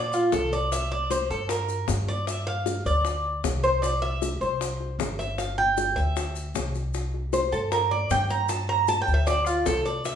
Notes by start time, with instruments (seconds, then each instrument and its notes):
Already playing: upright bass A#2, cuban tres D5
0.13 cuban tres F4, maracas
0.32 upright bass C2, cuban tres A4, high bongo, low bongo, maracas
0.52 cuban tres D5, high bongo, maracas
0.72 cuban tres E5, high bongo, maracas
0.92 cuban tres D5, high bongo
1.10 cuban tres C5, high bongo, maracas
1.30 upright bass G2, cuban tres A4, maracas
1.49 cuban tres A#4, high bongo, maracas
1.68 high bongo, maracas
1.88 upright bass G2, high bongo, low bongo, maracas
2.07 cuban tres D5, high bongo, maracas
2.27 cuban tres E5, high bongo, maracas
2.47 cuban tres F5, high bongo
2.66 high bongo, maracas
2.85 upright bass D2, cuban tres D5, high bongo, maracas
3.05 high bongo, maracas
3.44 upright bass C2, high bongo, low bongo, maracas
3.63 cuban tres C5, high bongo, maracas
3.82 cuban tres D5, high bongo, maracas
4.02 cuban tres E5, high bongo
4.22 high bongo, maracas
4.41 upright bass C2, cuban tres C5, maracas
4.61 high bongo, maracas
4.80 high bongo
4.99 upright bass G1, high bongo, low bongo, maracas
5.19 cuban tres E5, high bongo, maracas
5.38 cuban tres F5, high bongo, maracas
5.58 cuban tres G5, high bongo
5.77 high bongo, maracas
5.96 upright bass D2, cuban tres E5, high bongo, maracas
6.16 high bongo, maracas
6.36 maracas
6.55 upright bass C2, high bongo, low bongo, maracas
6.75 high bongo, maracas
6.94 high bongo, maracas
7.14 high bongo
7.33 cuban tres C5, high bongo, maracas
7.52 upright bass G2, cuban tres A4, maracas
7.72 cuban tres A#4, high bongo, maracas
7.91 cuban tres D5, high bongo
8.10 upright bass G2, cuban tres G5, high bongo, low bongo, maracas
8.30 cuban tres A#5, high bongo, maracas
8.49 cuban tres A5, high bongo, maracas
8.69 cuban tres A#5, high bongo
8.88 cuban tres A5, high bongo, maracas
9.02 cuban tres G5
9.07 upright bass D2, high bongo, maracas
9.14 cuban tres E5
9.27 cuban tres D5, high bongo, maracas
9.46 cuban tres F4, maracas
9.66 upright bass C2, cuban tres A4, high bongo, low bongo, maracas
9.85 cuban tres D5, high bongo, maracas
10.05 cuban tres E5, high bongo, maracas